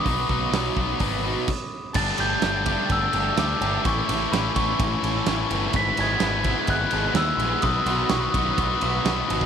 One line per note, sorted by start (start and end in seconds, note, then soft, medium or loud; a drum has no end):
0.00 1.44 D#6 loud
0.05 0.23 B1 loud
0.05 0.28 B2 loud
0.05 0.29 F#3 loud
0.05 0.29 B3 medium
0.05 0.29 D#4 loud
0.05 0.29 F#4 loud
0.05 kick loud
0.05 open hi-hat medium
0.29 0.46 B1 medium
0.29 0.52 B2 medium
0.29 0.52 F#3 medium
0.29 0.53 B3 loud
0.29 0.53 D#4 loud
0.29 0.51 F#4 medium
0.29 kick medium
0.52 0.69 B1 medium
0.52 0.76 B2 loud
0.52 0.77 F#3 medium
0.52 0.77 B3 medium
0.52 0.78 D#4 loud
0.52 0.76 F#4 loud
0.52 snare loud
0.52 open hi-hat medium
0.76 0.93 B1 medium
0.76 1.00 B2 medium
0.76 1.00 F#3 medium
0.76 1.01 B3 medium
0.76 1.02 D#4 medium
0.76 0.98 F#4 medium
0.76 kick medium
0.99 1.34 G#1 medium
0.99 1.24 B2 medium
0.99 1.24 F#3 medium
0.99 1.24 B3 loud
0.99 1.25 D#4 loud
0.99 1.24 F#4 medium
0.99 kick loud
0.99 open hi-hat medium
1.25 1.46 B2 medium
1.25 1.47 F#3 medium
1.25 1.47 B3 medium
1.25 1.47 D#4 medium
1.25 1.46 F#4 medium
1.48 kick loud
1.48 crash loud
1.93 2.11 G1 loud
1.93 2.42 G3 medium
1.93 2.21 A3 medium
1.93 2.19 D4 loud
1.93 3.82 G4 medium
1.93 2.17 G4 loud
1.93 3.82 A4 medium
1.93 3.82 D5 medium
1.93 3.82 A5 medium
1.93 2.20 A6 loud
1.93 kick loud
1.93 crash loud
2.18 2.35 G1 medium
2.18 2.50 G3 medium
2.18 2.44 A3 medium
2.18 2.43 D4 medium
2.18 2.44 G4 medium
2.18 2.93 G6 loud
2.18 ride medium
2.42 2.74 G1 medium
2.42 2.90 G3 medium
2.42 2.69 A3 medium
2.42 2.67 D4 medium
2.42 2.66 G4 medium
2.42 snare loud
2.42 ride loud
2.66 2.97 G3 medium
2.66 3.38 A3 medium
2.66 3.38 D4 medium
2.66 3.39 G4 medium
2.66 kick loud
2.66 ride medium
2.89 3.06 G1 loud
2.89 3.39 E6 loud
2.89 kick loud
2.89 ride medium
3.13 3.30 G1 medium
3.13 3.45 G3 medium
3.13 3.44 A3 medium
3.13 3.44 D4 medium
3.13 3.44 G4 loud
3.13 ride medium
3.37 3.53 D2 medium
3.37 3.83 G3 medium
3.37 3.62 A3 loud
3.37 3.61 D4 loud
3.37 3.60 G4 loud
3.37 3.87 D6 medium
3.37 snare loud
3.37 ride loud
3.61 3.77 G1 medium
3.61 3.85 G3 medium
3.61 3.84 A3 medium
3.61 3.84 D4 medium
3.61 3.83 G4 medium
3.61 ride medium
3.83 4.01 A1 loud
3.83 4.32 A2 loud
3.83 4.31 E3 medium
3.83 4.10 A3 loud
3.83 5.71 E4 medium
3.83 5.72 A4 medium
3.83 5.71 C#5 medium
3.83 7.59 G#5 medium
3.83 4.34 C#6 loud
3.83 kick loud
3.83 ride loud
3.87 4.09 C#4 loud
3.87 4.08 E4 loud
4.08 4.25 A1 medium
4.08 4.39 E3 medium
4.08 4.32 A3 medium
4.08 4.32 C#4 medium
4.08 4.34 E4 medium
4.08 4.38 A4 loud
4.08 ride medium
4.32 4.48 A1 medium
4.32 5.27 E3 medium
4.32 4.57 A3 medium
4.32 4.56 C#4 medium
4.32 4.56 E4 medium
4.32 4.56 B5 medium
4.32 snare loud
4.32 ride loud
4.56 4.72 A1 loud
4.56 4.87 E3 medium
4.56 5.27 A3 medium
4.56 5.27 C#4 medium
4.56 5.28 E4 medium
4.56 4.86 A4 medium
4.56 5.46 C#6 medium
4.56 kick medium
4.56 ride medium
4.79 4.95 A1 loud
4.79 kick loud
4.79 ride loud
5.03 5.19 A1 loud
5.03 5.35 E3 medium
5.03 5.35 A3 medium
5.03 5.34 C#4 medium
5.03 5.34 A4 medium
5.03 ride medium
5.26 5.43 A1 loud
5.26 5.72 A2 medium
5.26 5.73 E3 medium
5.26 5.52 A3 loud
5.26 5.50 C#4 loud
5.26 5.49 E4 loud
5.26 snare loud
5.26 ride loud
5.50 5.67 G1 loud
5.50 5.74 E3 medium
5.50 5.74 A3 medium
5.50 5.73 C#4 medium
5.50 5.72 E4 medium
5.50 5.74 A4 medium
5.50 ride medium
5.73 5.90 G#1 loud
5.73 6.21 G#2 loud
5.73 6.20 E3 loud
5.73 5.99 G#3 loud
5.73 5.99 B3 loud
5.73 5.97 E4 medium
5.73 9.46 F#4 medium
5.73 9.46 B4 medium
5.73 7.61 E5 medium
5.73 5.97 B6 loud
5.73 kick loud
5.73 ride loud
5.97 6.14 G#1 medium
5.97 6.21 G#3 medium
5.97 6.22 B3 medium
5.97 6.22 E4 medium
5.97 6.29 G#4 loud
5.97 6.72 G#6 loud
5.97 snare soft
5.97 ride medium
6.20 6.53 G#1 medium
6.20 6.68 E3 medium
6.20 6.46 G#3 medium
6.20 6.45 B3 medium
6.20 6.43 E4 medium
6.20 snare loud
6.20 ride loud
6.44 7.15 G#3 medium
6.44 7.16 B3 medium
6.44 7.17 E4 medium
6.44 6.76 G#4 medium
6.44 kick loud
6.44 ride medium
6.67 6.84 G#1 loud
6.67 7.18 F#6 loud
6.67 kick loud
6.67 ride medium
6.91 7.09 G#1 medium
6.91 7.23 G#3 medium
6.91 7.24 B3 medium
6.91 7.23 E4 medium
6.91 7.23 G#4 medium
6.91 ride medium
7.14 7.31 D#2 loud
7.14 7.62 G#2 medium
7.14 7.62 E3 medium
7.14 7.40 G#3 loud
7.14 7.39 B3 loud
7.14 7.38 E4 loud
7.14 7.65 E6 loud
7.14 snare loud
7.14 ride loud
7.37 7.54 A#1 medium
7.37 7.62 B3 medium
7.37 7.61 E4 medium
7.37 7.63 G#4 medium
7.37 ride medium
7.41 7.62 G#3 medium
7.62 7.79 B1 loud
7.62 8.10 B2 loud
7.62 8.09 D#3 loud
7.62 7.87 F#3 loud
7.62 7.86 B3 loud
7.62 7.84 F#4 loud
7.62 9.46 D#5 medium
7.62 9.46 B5 medium
7.62 8.11 D#6 loud
7.62 kick loud
7.62 ride loud
7.86 8.02 B1 loud
7.86 8.10 F#3 medium
7.86 8.10 B3 medium
7.86 8.17 D#4 loud
7.86 8.11 F#4 medium
7.86 ride medium
8.09 8.26 B1 medium
8.09 8.57 D#3 medium
8.09 8.34 F#3 medium
8.09 8.34 B3 medium
8.09 8.32 F#4 medium
8.09 8.34 C#6 medium
8.09 snare loud
8.09 ride loud
8.32 8.50 B1 medium
8.32 9.04 F#3 medium
8.32 9.04 B3 medium
8.32 8.65 D#4 medium
8.32 9.05 F#4 medium
8.32 9.24 D#6 medium
8.32 kick loud
8.32 ride medium
8.58 8.74 B1 loud
8.58 kick loud
8.58 ride loud
8.81 8.98 B1 medium
8.81 9.13 F#3 medium
8.81 9.13 B3 medium
8.81 9.13 D#4 medium
8.81 9.13 F#4 loud
8.81 ride medium
9.04 9.21 B1 loud
9.04 9.46 B2 loud
9.04 9.46 D#3 medium
9.04 9.29 F#3 loud
9.04 9.28 B3 loud
9.04 9.27 F#4 loud
9.04 snare loud
9.04 ride loud
9.28 9.46 G#1 medium
9.28 9.46 F#3 medium
9.28 9.46 B3 medium
9.28 9.46 D#4 medium
9.28 9.46 F#4 medium
9.28 ride medium
9.41 kick medium